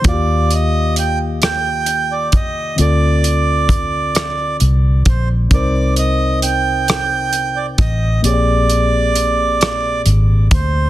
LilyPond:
<<
  \new Staff \with { instrumentName = "Accordion" } { \time 6/8 \key c \dorian \tempo 4. = 44 d''8 ees''8 g''8 g''8. d''16 ees''8 | d''2 r8 c''8 | d''8 ees''8 g''8 g''8. d''16 ees''8 | d''2 r8 c''8 | }
  \new Staff \with { instrumentName = "Reed electric piano" } { \time 6/8 \key c \dorian <ees bes f' fis' g' f''>2. | <d c' f' a' d''>2. | <c c' ees' bes' c''>2. | <bes, bes c' g' aes' des'' d''>2. | }
  \new Staff \with { instrumentName = "Fingered electric bass" } { \clef bass \time 6/8 \key c \dorian ees,2~ ees,8 c,8 | d,2 c,8 bes,,8 | c,2~ c,8 a,,8 | bes,,2 aes,,8 d,8 | }
  \new DrumStaff \with { instrumentName = "Drums" } \drummode { \time 6/8 <hh bd>8 hh8 hh8 <hh ss>8 hh8 <hh bd>8 | hh8 hh8 <hh bd>8 <hh ss>8 hh8 <hh bd>8 | <hh bd>8 hh8 hh8 <hh ss>8 hh8 <hh bd>8 | hh8 hh8 hh8 <hh ss>8 hh8 <hh bd>8 | }
>>